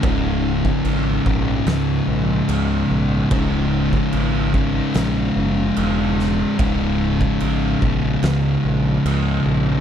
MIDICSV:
0, 0, Header, 1, 4, 480
1, 0, Start_track
1, 0, Tempo, 819672
1, 20, Time_signature, 4, 2, 24, 8
1, 5742, End_track
2, 0, Start_track
2, 0, Title_t, "Distorted electric guitar"
2, 0, Program_c, 0, 30
2, 14, Note_on_c, 0, 37, 93
2, 25, Note_on_c, 0, 44, 98
2, 33, Note_on_c, 0, 49, 107
2, 728, Note_off_c, 0, 44, 0
2, 730, Note_off_c, 0, 49, 0
2, 732, Note_on_c, 0, 49, 82
2, 742, Note_on_c, 0, 44, 73
2, 752, Note_off_c, 0, 37, 0
2, 754, Note_on_c, 0, 37, 68
2, 1926, Note_off_c, 0, 44, 0
2, 1932, Note_off_c, 0, 37, 0
2, 1934, Note_on_c, 0, 37, 92
2, 1945, Note_on_c, 0, 44, 92
2, 1949, Note_off_c, 0, 49, 0
2, 1952, Note_on_c, 0, 49, 100
2, 2647, Note_off_c, 0, 44, 0
2, 2657, Note_off_c, 0, 49, 0
2, 2659, Note_on_c, 0, 49, 86
2, 2670, Note_on_c, 0, 44, 85
2, 2677, Note_off_c, 0, 37, 0
2, 2679, Note_on_c, 0, 37, 70
2, 3849, Note_off_c, 0, 44, 0
2, 3854, Note_off_c, 0, 37, 0
2, 3856, Note_on_c, 0, 37, 99
2, 3867, Note_on_c, 0, 44, 104
2, 3873, Note_off_c, 0, 49, 0
2, 3875, Note_on_c, 0, 49, 101
2, 4568, Note_off_c, 0, 44, 0
2, 4570, Note_off_c, 0, 49, 0
2, 4572, Note_on_c, 0, 49, 84
2, 4583, Note_on_c, 0, 44, 77
2, 4590, Note_off_c, 0, 37, 0
2, 4593, Note_on_c, 0, 37, 70
2, 5742, Note_off_c, 0, 37, 0
2, 5742, Note_off_c, 0, 44, 0
2, 5742, Note_off_c, 0, 49, 0
2, 5742, End_track
3, 0, Start_track
3, 0, Title_t, "Fingered electric bass"
3, 0, Program_c, 1, 33
3, 19, Note_on_c, 1, 25, 94
3, 404, Note_off_c, 1, 25, 0
3, 494, Note_on_c, 1, 32, 90
3, 689, Note_off_c, 1, 32, 0
3, 737, Note_on_c, 1, 34, 92
3, 930, Note_off_c, 1, 34, 0
3, 972, Note_on_c, 1, 37, 87
3, 1167, Note_off_c, 1, 37, 0
3, 1212, Note_on_c, 1, 34, 93
3, 1408, Note_off_c, 1, 34, 0
3, 1453, Note_on_c, 1, 37, 91
3, 1648, Note_off_c, 1, 37, 0
3, 1699, Note_on_c, 1, 34, 96
3, 1891, Note_off_c, 1, 34, 0
3, 1941, Note_on_c, 1, 25, 96
3, 2325, Note_off_c, 1, 25, 0
3, 2418, Note_on_c, 1, 32, 88
3, 2803, Note_off_c, 1, 32, 0
3, 2898, Note_on_c, 1, 34, 92
3, 3091, Note_off_c, 1, 34, 0
3, 3137, Note_on_c, 1, 30, 97
3, 3330, Note_off_c, 1, 30, 0
3, 3378, Note_on_c, 1, 28, 94
3, 3763, Note_off_c, 1, 28, 0
3, 3858, Note_on_c, 1, 25, 97
3, 4243, Note_off_c, 1, 25, 0
3, 4338, Note_on_c, 1, 32, 85
3, 4530, Note_off_c, 1, 32, 0
3, 4578, Note_on_c, 1, 34, 91
3, 4770, Note_off_c, 1, 34, 0
3, 4816, Note_on_c, 1, 37, 95
3, 5009, Note_off_c, 1, 37, 0
3, 5059, Note_on_c, 1, 34, 96
3, 5251, Note_off_c, 1, 34, 0
3, 5297, Note_on_c, 1, 37, 91
3, 5490, Note_off_c, 1, 37, 0
3, 5532, Note_on_c, 1, 34, 96
3, 5727, Note_off_c, 1, 34, 0
3, 5742, End_track
4, 0, Start_track
4, 0, Title_t, "Drums"
4, 17, Note_on_c, 9, 49, 53
4, 19, Note_on_c, 9, 36, 114
4, 75, Note_off_c, 9, 49, 0
4, 78, Note_off_c, 9, 36, 0
4, 379, Note_on_c, 9, 36, 87
4, 438, Note_off_c, 9, 36, 0
4, 496, Note_on_c, 9, 49, 61
4, 555, Note_off_c, 9, 49, 0
4, 738, Note_on_c, 9, 36, 93
4, 797, Note_off_c, 9, 36, 0
4, 975, Note_on_c, 9, 49, 62
4, 983, Note_on_c, 9, 38, 112
4, 1033, Note_off_c, 9, 49, 0
4, 1042, Note_off_c, 9, 38, 0
4, 1456, Note_on_c, 9, 49, 62
4, 1514, Note_off_c, 9, 49, 0
4, 1937, Note_on_c, 9, 49, 64
4, 1939, Note_on_c, 9, 36, 111
4, 1995, Note_off_c, 9, 49, 0
4, 1998, Note_off_c, 9, 36, 0
4, 2300, Note_on_c, 9, 36, 84
4, 2359, Note_off_c, 9, 36, 0
4, 2416, Note_on_c, 9, 49, 65
4, 2474, Note_off_c, 9, 49, 0
4, 2659, Note_on_c, 9, 36, 85
4, 2718, Note_off_c, 9, 36, 0
4, 2894, Note_on_c, 9, 49, 65
4, 2902, Note_on_c, 9, 38, 111
4, 2953, Note_off_c, 9, 49, 0
4, 2961, Note_off_c, 9, 38, 0
4, 3376, Note_on_c, 9, 49, 62
4, 3435, Note_off_c, 9, 49, 0
4, 3626, Note_on_c, 9, 38, 34
4, 3684, Note_off_c, 9, 38, 0
4, 3858, Note_on_c, 9, 49, 57
4, 3861, Note_on_c, 9, 36, 110
4, 3917, Note_off_c, 9, 49, 0
4, 3920, Note_off_c, 9, 36, 0
4, 4220, Note_on_c, 9, 36, 89
4, 4279, Note_off_c, 9, 36, 0
4, 4336, Note_on_c, 9, 49, 64
4, 4394, Note_off_c, 9, 49, 0
4, 4580, Note_on_c, 9, 36, 87
4, 4639, Note_off_c, 9, 36, 0
4, 4817, Note_on_c, 9, 49, 59
4, 4825, Note_on_c, 9, 38, 111
4, 4875, Note_off_c, 9, 49, 0
4, 4884, Note_off_c, 9, 38, 0
4, 5303, Note_on_c, 9, 49, 62
4, 5362, Note_off_c, 9, 49, 0
4, 5742, End_track
0, 0, End_of_file